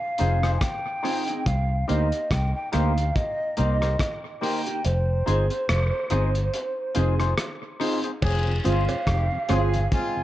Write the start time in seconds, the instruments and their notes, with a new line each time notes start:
Already playing: flute F5
0.18 fingered electric bass F1, clean electric guitar C4 D#4 G#4, synth stab D#4 F4 G#4 C5, closed hi-hat
0.43 synth stab D#4 F4 G#4 C5, cross-stick, closed hi-hat
0.57 flute G#5
0.61 flute G5, kick, cross-stick, closed hi-hat
1.03 clean electric guitar C4 D#4 G#4, synth stab D#4 F4 G#4 C5, open hi-hat
1.28 clean electric guitar C4 D#4 G#4, closed hi-hat
1.46 fingered electric bass C2, flute F5, kick, closed hi-hat
1.88 fingered electric bass D2, clean electric guitar A#3 D#4 G4, synth stab D#4 G4 A#4 C5, flute D#5, closed hi-hat
2.12 closed hi-hat
2.31 fingered electric bass C2, flute G5, kick, cross-stick, closed hi-hat
2.55 flute G5
2.72 fingered electric bass D2, clean electric guitar A#3 D#4 G4, synth stab D#4 G4 A#4 C5, flute F5, cross-stick, closed hi-hat
2.98 closed hi-hat
3.16 flute D#5, kick, closed hi-hat
3.57 fingered electric bass C2, clean electric guitar A#3 D#4 G4, synth stab D#4 G4 A#4 C5, flute D#5, closed hi-hat
3.81 synth stab D#4 G4 A#4 C5, cross-stick, closed hi-hat
3.99 kick, cross-stick, closed hi-hat
4.41 clean electric guitar A#3 D#4 G4, synth stab D#4 G4 A#4 C5, flute G5, open hi-hat
4.66 clean electric guitar A#3 D#4 G4, closed hi-hat
4.85 fingered electric bass F1, flute C5, closed hi-hat
5.26 fingered electric bass G1, clean electric guitar C4 D#4 G#4, synth stab D#4 F4 G#4 C5, closed hi-hat
5.50 closed hi-hat
5.69 fingered electric bass F1, cross-stick, closed hi-hat
6.10 fingered electric bass G1, clean electric guitar C4 D#4 G#4, synth stab D#4 F4 G#4 C5, closed hi-hat
6.35 closed hi-hat
6.54 closed hi-hat
6.95 fingered electric bass F1, clean electric guitar C4 D#4 G#4, synth stab D#4 F4 G#4 C5, closed hi-hat
7.19 synth stab D#4 F4 G#4 C5, cross-stick, closed hi-hat
7.38 cross-stick, closed hi-hat
7.80 clean electric guitar C4 D#4 G#4, synth stab D#4 F4 G#4 C5, open hi-hat
8.04 synth stab G#4 C5, closed hi-hat
8.22 fingered electric bass F1, horn section C4 F4 G#4, kick, crash, cowbell, vibraslap
8.47 tonewheel organ F2 C3
8.64 fingered electric bass G1, tonewheel organ F3 G#3 C4, horn section G#3 C4 F4, clean electric guitar C4 F4 G#4, synth stab C4 F4 G#4 C5, flute F5, closed hi-hat
8.89 tonewheel organ F2 C3, closed hi-hat, cowbell
9.07 fingered electric bass F1, horn section C4 D#4 G4, kick, cross-stick, closed hi-hat
9.32 tonewheel organ F2 C3
9.49 fingered electric bass G1, tonewheel organ F3 G#3 C4, synth stab C4 F4 G#4 C5, clean electric guitar C4 F4 G#4, horn section C4 F4 G#4, cross-stick, closed hi-hat, cowbell
9.74 tonewheel organ F2 C3, closed hi-hat
9.92 horn section G#3 C4 F4, flute G#5, kick, closed hi-hat
10.16 tonewheel organ F2 C3